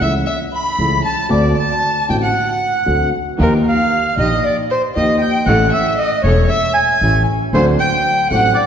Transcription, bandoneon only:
0.03 0.14 E5 medium
0.29 0.40 E5 medium
0.55 1.02 B5 medium
1.06 1.29 A5 medium
1.30 1.57 D5 medium
1.60 2.07 A5 medium
2.12 2.17 G5 medium
2.24 3.10 F#5 medium
3.43 3.54 A#4 medium
3.68 4.15 F5 medium
4.19 4.45 D#5 medium
4.46 4.57 D5 medium
4.71 4.82 C5 medium
4.97 5.22 D#5 medium
5.22 5.48 G5 medium
5.46 5.71 F#5 medium
5.73 5.99 E5 medium
5.99 6.23 D#5 medium
6.23 6.50 C#5 medium
6.49 6.73 E5 medium
6.74 7.23 G#5 medium
7.54 7.65 C5 medium
7.80 8.28 G5 medium
8.31 8.57 F#5 medium
8.54 8.66 D5 medium

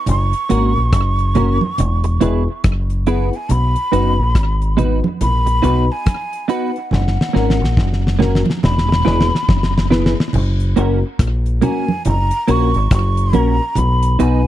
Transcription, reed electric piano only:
0.50 0.76 A#3 medium
0.50 0.76 C#4 medium
0.50 0.76 F#4 medium
0.50 0.76 A#4 medium
1.35 1.61 A#3 medium
1.35 1.62 C#4 medium
1.35 1.62 F#4 medium
1.35 1.62 A#4 medium
2.21 2.47 B3 medium
2.21 2.47 E4 medium
2.21 2.47 G#4 medium
2.21 2.48 B4 medium
3.07 3.33 B3 medium
3.07 3.33 E4 medium
3.07 3.33 G#4 medium
3.07 3.33 B4 medium
3.92 4.18 B3 medium
3.92 4.18 D#4 medium
3.92 4.19 F#4 medium
3.92 4.19 B4 loud
4.78 5.04 B3 medium
4.78 5.04 D#4 medium
4.78 5.04 F#4 medium
4.78 5.04 B4 medium
5.64 5.89 B3 medium
5.64 5.89 D#4 medium
5.64 5.90 F#4 medium
5.64 5.90 B4 medium
6.49 6.75 B3 medium
6.49 6.75 D#4 medium
6.49 6.75 F#4 medium
6.49 6.76 B4 medium
7.34 7.60 A#3 medium
7.34 7.61 C#4 medium
7.34 7.61 F#4 medium
7.34 7.61 A#4 medium
8.20 8.46 A#3 medium
8.20 8.46 C#4 medium
8.20 8.46 F#4 medium
8.20 8.47 A#4 medium
9.06 9.32 B3 medium
9.06 9.32 E4 medium
9.06 9.32 G#4 medium
9.06 9.32 B4 medium
9.90 10.17 B3 medium
9.90 10.17 E4 medium
9.90 10.17 G#4 medium
9.90 10.17 B4 medium
10.76 11.02 A#3 medium
10.76 11.03 C#4 medium
10.76 11.03 F#4 medium
10.76 11.03 A#4 medium
11.62 11.88 A#3 medium
11.62 11.88 C#4 medium
11.62 11.88 F#4 medium
11.62 11.89 A#4 medium
12.47 12.74 A#3 medium
12.47 12.74 C#4 medium
12.47 12.74 F#4 medium
12.47 12.74 A#4 medium
13.33 13.59 A#3 medium
13.33 13.59 C#4 medium
13.33 13.59 F#4 medium
13.33 13.60 A#4 loud
14.19 14.45 B3 medium
14.19 14.45 D#4 medium
14.19 14.45 F#4 medium
14.19 14.46 B4 loud

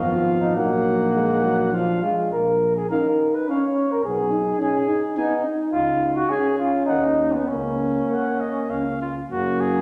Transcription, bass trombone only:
0.00 0.58 G#1 soft
0.56 2.03 A#1 soft
2.33 2.82 A#1 soft
4.05 4.52 B1 soft
5.74 6.21 C#2 soft
6.89 7.39 D#2 soft
7.49 8.00 C#2 soft
8.69 9.20 C#2 soft
9.30 9.81 F#1 soft

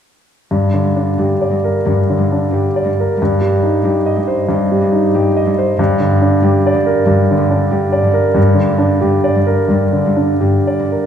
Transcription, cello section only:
0.52 0.60 G2 soft
0.85 0.93 G2 soft
1.19 1.27 G2 soft
1.51 1.59 G2 soft
1.85 1.93 G2 soft
2.18 2.26 G2 soft
2.51 2.59 G2 soft
2.85 2.93 G2 soft
3.18 3.26 G2 soft
3.52 3.60 G2 soft
3.84 3.92 G2 soft
4.16 4.24 G2 soft
4.50 4.58 G2 soft
4.82 4.90 G2 soft
5.15 5.23 G2 soft
5.46 5.54 G2 medium
5.78 5.86 G2 soft
6.11 6.19 G2 soft
6.42 6.50 G2 medium
6.74 6.82 G2 soft
7.06 7.14 G2 medium
7.38 7.46 G2 medium
7.71 7.79 G2 soft
8.03 8.11 G2 soft
8.37 8.45 G2 medium
8.70 8.78 G2 soft
9.03 9.11 G2 soft
9.36 9.44 G2 soft
9.70 9.78 G2 soft
10.06 10.14 G2 soft
10.42 10.50 G2 soft
10.80 10.88 G2 soft

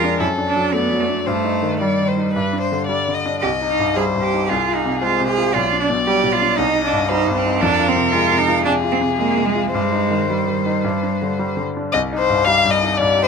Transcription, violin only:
0.00 0.22 A#4 medium
0.20 0.72 A4 soft
0.73 1.28 D5 soft
1.26 1.75 C5 soft
1.80 2.10 D5 soft
2.08 2.33 C5 soft
2.33 2.60 B4 soft
2.60 2.86 C5 soft
2.87 3.16 D5 soft
3.14 3.40 D#5 soft
3.41 3.98 D#5 soft
3.97 4.48 C5 soft
4.48 5.03 G#4 soft
5.02 5.55 C5 soft
5.54 6.59 D5 soft
6.58 7.11 D#5 soft
7.10 7.61 C5 soft
7.62 8.64 A#4 medium
8.66 9.71 G#4 soft
9.74 11.62 C5 soft
11.92 12.00 D#5 medium
12.19 12.46 C5 medium
12.45 12.72 F5 medium
12.71 12.99 D#5 medium
12.97 13.23 D5 medium
13.24 13.28 C5 medium

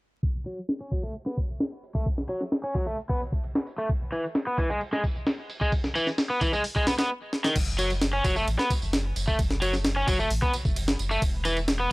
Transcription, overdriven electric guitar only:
0.46 0.57 F#3 medium
0.81 0.91 C#4 medium
0.92 1.01 F#3 medium
1.03 1.13 A3 medium
1.26 1.35 B3 medium
1.95 2.04 A3 medium
2.29 2.40 F#3 medium
2.64 2.74 C#4 medium
2.75 2.84 F#3 medium
2.87 2.96 A3 medium
3.09 3.19 B3 medium
3.78 3.87 A3 medium
4.12 4.23 E3 medium
4.47 4.57 B3 medium
4.58 4.68 E3 medium
4.70 4.79 G#3 medium
4.93 5.02 G#3 loud
5.61 5.71 G#3 medium
5.96 6.07 E3 medium
6.30 6.40 B3 medium
6.41 6.51 E3 medium
6.53 6.62 G#3 medium
6.76 6.85 G#3 loud
6.87 6.93 B3 loud
6.99 7.09 B3 loud
7.44 7.54 D#3 medium
7.79 7.90 F#3 medium
8.13 8.23 C#4 medium
8.24 8.34 F#3 loud
8.36 8.45 A3 medium
8.59 8.68 B3 loud
9.28 9.37 A3 medium
9.62 9.73 F#3 medium
9.96 10.06 C#4 medium
10.08 10.17 F#3 loud
10.19 10.29 A3 medium
10.42 10.51 B3 loud
11.11 11.20 A3 medium
11.45 11.56 E3 medium
11.80 11.90 B3 medium

